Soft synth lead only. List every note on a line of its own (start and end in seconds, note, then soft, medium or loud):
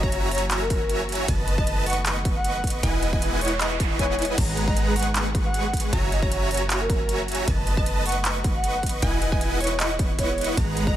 0.03 0.09 C#5 medium
0.12 0.19 C#5 medium
0.32 0.43 C#5 medium
0.61 1.00 A#4 loud
1.58 1.68 D#5 loud
1.86 1.97 F#5 medium
2.36 2.53 F#5 loud
2.55 2.65 F#5 medium
3.03 3.09 D#5 medium
3.13 3.19 D#5 medium
3.41 3.48 C#5 medium
3.52 3.57 C#5 medium
3.61 3.67 D#5 medium
3.71 3.77 D#5 medium
3.99 4.29 C#5 loud
4.67 4.77 D#5 loud
4.96 5.07 F#5 loud
5.45 5.62 F#5 medium
5.64 5.74 F#5 medium
6.12 6.20 D#5 medium
6.23 6.28 C#5 loud
6.32 6.38 C#5 medium
6.51 6.62 C#5 medium
6.81 7.19 A#4 loud
7.77 7.87 D#5 loud
8.06 8.17 F#5 medium
8.55 8.72 F#5 loud
8.74 8.84 F#5 medium
9.22 9.28 D#5 medium
9.32 9.38 D#5 medium
9.60 9.67 C#5 medium
9.71 9.77 C#5 medium
9.80 9.86 D#5 medium
9.90 9.96 D#5 medium
10.18 10.48 C#5 loud
10.87 10.97 D#5 loud